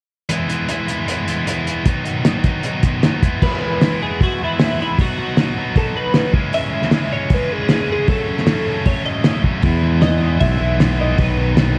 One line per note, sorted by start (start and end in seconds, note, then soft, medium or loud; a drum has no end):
0.29 0.67 E3 medium
0.29 0.51 G#3 medium
0.29 0.50 B3 medium
0.29 0.48 E4 medium
0.29 closed hi-hat medium
0.48 0.68 G#3 soft
0.48 0.70 B3 medium
0.48 0.71 E4 medium
0.48 closed hi-hat medium
0.68 1.06 E3 medium
0.68 0.90 G#3 medium
0.68 0.89 B3 medium
0.68 0.87 E4 medium
0.68 closed hi-hat medium
0.87 1.06 G#3 soft
0.87 1.09 B3 medium
0.87 1.09 E4 medium
0.87 closed hi-hat medium
1.06 1.45 E3 medium
1.06 1.29 G#3 medium
1.06 1.28 B3 medium
1.06 1.26 E4 medium
1.06 closed hi-hat medium
1.27 1.45 G#3 soft
1.27 1.47 B3 medium
1.27 1.48 E4 medium
1.27 closed hi-hat medium
1.46 1.85 E3 medium
1.46 1.85 G#3 medium
1.46 1.87 B3 medium
1.46 1.87 E4 medium
1.46 closed hi-hat medium
1.67 closed hi-hat medium
1.84 2.24 B2 medium
1.84 2.22 D#3 medium
1.84 2.05 F#3 medium
1.84 2.04 B3 medium
1.84 2.02 D#4 medium
1.84 kick loud
1.84 closed hi-hat medium
2.03 2.23 F#3 soft
2.03 2.24 B3 medium
2.03 2.25 D#4 medium
2.03 closed hi-hat medium
2.23 2.63 D#3 medium
2.23 2.46 F#3 medium
2.23 2.44 B3 medium
2.23 2.42 D#4 medium
2.23 snare medium
2.23 closed hi-hat medium
2.44 2.64 F#3 medium
2.44 2.64 B3 medium
2.44 2.65 D#4 medium
2.44 kick medium
2.44 closed hi-hat soft
2.63 3.03 B2 medium
2.63 3.01 D#3 medium
2.63 2.84 F#3 medium
2.63 2.83 B3 medium
2.63 2.81 D#4 medium
2.63 closed hi-hat medium
2.82 3.02 F#3 medium
2.82 3.04 B3 medium
2.82 3.04 D#4 medium
2.82 kick medium
2.82 closed hi-hat medium
3.02 3.21 D#3 medium
3.02 3.22 F#3 medium
3.02 3.22 B3 medium
3.02 3.22 D#4 medium
3.02 snare medium
3.02 closed hi-hat medium
3.23 3.41 E3 medium
3.23 3.42 G#3 medium
3.23 3.42 B3 medium
3.23 3.41 E4 medium
3.23 kick medium
3.23 closed hi-hat medium
3.42 3.63 E3 medium
3.42 3.63 G#3 medium
3.42 3.64 B3 medium
3.42 3.64 E4 medium
3.42 4.02 B4 medium
3.42 kick medium
3.42 crash medium
3.63 3.82 E3 medium
3.63 3.82 G#3 medium
3.63 3.83 B3 medium
3.63 3.84 E4 medium
3.81 4.03 E3 medium
3.81 4.02 G#3 medium
3.81 4.03 B3 medium
3.81 4.04 E4 medium
3.81 snare medium
3.81 open hi-hat soft
4.03 4.20 E3 medium
4.03 4.21 G#3 medium
4.03 4.22 B3 medium
4.03 4.22 E4 medium
4.03 4.22 G#4 medium
4.21 4.40 E3 medium
4.21 4.40 G#3 medium
4.21 4.41 B3 medium
4.21 4.42 E4 medium
4.21 4.42 F#4 medium
4.21 kick medium
4.21 open hi-hat soft
4.41 4.59 E3 medium
4.41 4.58 G#3 medium
4.41 4.60 B3 medium
4.41 4.60 E4 medium
4.41 4.81 E4 medium
4.59 4.78 E3 medium
4.59 4.78 G#3 medium
4.59 4.79 B3 medium
4.59 4.80 E4 medium
4.59 snare medium
4.59 open hi-hat soft
4.79 4.98 E3 medium
4.79 4.97 G#3 medium
4.79 4.99 B3 medium
4.79 5.00 E4 medium
4.79 5.01 E4 medium
4.99 5.16 B2 medium
4.99 5.17 F#3 medium
4.99 5.18 B3 medium
4.99 5.18 D#4 medium
4.99 5.79 F#4 medium
4.99 kick loud
4.99 open hi-hat soft
5.17 5.36 B2 medium
5.17 5.37 F#3 medium
5.17 5.38 B3 medium
5.17 5.38 D#4 medium
5.37 5.56 B2 medium
5.37 5.56 F#3 medium
5.37 5.58 B3 medium
5.37 5.58 D#4 medium
5.37 snare medium
5.37 open hi-hat soft
5.57 5.74 B2 medium
5.57 5.75 F#3 medium
5.57 5.75 B3 medium
5.57 5.76 D#4 medium
5.75 5.93 B2 medium
5.75 5.94 F#3 medium
5.75 5.94 B3 medium
5.75 5.95 D#4 medium
5.75 5.96 A4 medium
5.75 kick medium
5.75 open hi-hat soft
5.95 6.13 B2 medium
5.95 6.14 F#3 medium
5.95 6.14 B3 medium
5.95 6.15 D#4 medium
5.95 6.32 B4 medium
6.14 6.32 B2 medium
6.14 6.33 F#3 medium
6.14 6.33 B3 medium
6.14 6.33 D#4 medium
6.14 snare medium
6.14 open hi-hat soft
6.33 6.52 C#3 medium
6.33 6.53 E3 medium
6.33 6.53 G#3 medium
6.33 6.54 C#4 loud
6.33 kick medium
6.53 6.70 C#3 medium
6.53 6.72 E3 medium
6.53 6.72 G#3 medium
6.53 6.73 C#4 medium
6.53 7.14 E5 medium
6.53 open hi-hat soft
6.72 6.91 C#3 medium
6.72 6.93 E3 medium
6.72 6.92 G#3 medium
6.72 6.93 C#4 medium
6.82 snare soft
6.91 7.10 C#3 medium
6.91 7.12 E3 medium
6.91 7.12 G#3 medium
6.91 7.13 C#4 medium
6.91 snare medium
6.91 open hi-hat soft
7.11 7.30 C#3 medium
7.11 7.31 E3 medium
7.11 7.32 G#3 medium
7.11 7.32 C#4 medium
7.11 7.34 C#5 medium
7.30 7.48 C#3 medium
7.30 7.50 E3 medium
7.30 7.49 G#3 medium
7.30 7.50 C#4 medium
7.30 kick medium
7.30 open hi-hat soft
7.34 7.53 B4 medium
7.49 7.67 C#3 medium
7.49 7.70 E3 medium
7.49 7.69 G#3 medium
7.49 7.70 C#4 medium
7.49 7.90 G#4 medium
7.69 7.88 C#3 medium
7.69 7.90 E3 medium
7.69 7.89 G#3 medium
7.69 7.90 C#4 medium
7.69 snare medium
7.69 open hi-hat soft
7.89 8.07 C#3 medium
7.89 8.08 E3 medium
7.89 8.08 G#3 medium
7.89 8.08 C#4 medium
7.89 8.09 G#4 medium
8.07 8.27 F#2 medium
8.07 8.28 C#3 medium
8.07 8.28 F#3 medium
8.07 8.29 A3 medium
8.07 8.29 C#4 medium
8.07 8.89 A4 medium
8.07 kick loud
8.07 open hi-hat soft
8.28 8.46 F#2 medium
8.28 8.47 C#3 medium
8.28 8.48 F#3 medium
8.28 8.47 A3 medium
8.28 8.48 C#4 medium
8.38 snare soft
8.47 8.66 F#2 medium
8.47 8.66 C#3 medium
8.47 8.67 F#3 medium
8.47 8.67 A3 medium
8.47 8.68 C#4 medium
8.47 snare medium
8.47 open hi-hat soft
8.67 8.85 F#2 medium
8.67 8.86 C#3 medium
8.67 8.86 F#3 medium
8.67 8.87 A3 medium
8.67 8.87 C#4 medium
8.86 9.05 F#2 medium
8.86 9.05 C#3 medium
8.86 9.06 F#3 medium
8.86 9.06 A3 medium
8.86 9.07 C#4 medium
8.86 9.05 C#5 medium
8.86 kick medium
8.86 open hi-hat soft
9.05 9.24 F#2 medium
9.05 9.25 C#3 medium
9.05 9.25 F#3 medium
9.05 9.26 A3 medium
9.05 9.26 C#4 medium
9.05 9.42 D#5 medium
9.24 9.42 F#2 medium
9.24 9.43 C#3 medium
9.24 9.43 F#3 medium
9.24 9.44 A3 medium
9.24 9.45 C#4 medium
9.24 snare medium
9.24 open hi-hat soft
9.44 9.62 F#2 medium
9.44 9.62 C#3 medium
9.44 9.63 F#3 medium
9.44 9.63 A3 medium
9.44 9.63 C#4 medium
9.44 kick medium
9.62 10.37 E2 medium
9.62 9.82 E3 medium
9.62 9.81 G#3 medium
9.62 9.83 B3 medium
9.62 9.84 E4 medium
9.62 kick loud
9.62 open hi-hat soft
9.82 10.00 E3 medium
9.82 10.00 G#3 medium
9.82 10.02 B3 medium
9.82 10.03 E4 medium
10.01 10.21 E3 medium
10.01 10.21 G#3 medium
10.01 10.22 B3 medium
10.01 10.23 E4 medium
10.01 10.40 D#5 medium
10.01 snare medium
10.01 open hi-hat soft
10.21 10.40 E3 medium
10.21 10.39 G#3 medium
10.21 10.41 B3 medium
10.21 10.42 E4 medium
10.40 10.59 B1 medium
10.40 10.59 E3 medium
10.40 10.59 G#3 medium
10.40 10.61 B3 medium
10.40 10.61 E4 medium
10.40 11.01 E5 medium
10.40 kick medium
10.40 open hi-hat soft
10.60 11.15 B1 medium
10.60 10.79 E3 medium
10.60 10.78 G#3 medium
10.60 10.80 B3 medium
10.60 10.81 E4 medium
10.79 10.98 E3 medium
10.79 10.98 G#3 medium
10.79 11.00 B3 medium
10.79 11.00 E4 medium
10.79 snare medium
10.79 open hi-hat soft
10.99 11.18 E3 medium
10.99 11.18 G#3 medium
10.99 11.19 B3 medium
10.99 11.19 E4 medium
10.99 11.20 D#5 medium
11.18 11.79 B1 medium
11.18 11.35 B2 medium
11.18 11.37 D#3 medium
11.18 11.37 F#3 medium
11.18 11.39 B3 medium
11.18 11.38 D#4 medium
11.18 11.56 B4 medium
11.18 kick loud
11.18 open hi-hat soft
11.37 11.55 B2 medium
11.37 11.55 D#3 medium
11.37 11.56 F#3 medium
11.37 11.58 B3 medium
11.37 11.57 D#4 medium
11.56 11.75 B2 medium
11.56 11.76 D#3 medium
11.56 11.77 F#3 medium
11.56 11.78 B3 medium
11.56 11.77 D#4 medium
11.56 snare medium
11.56 open hi-hat soft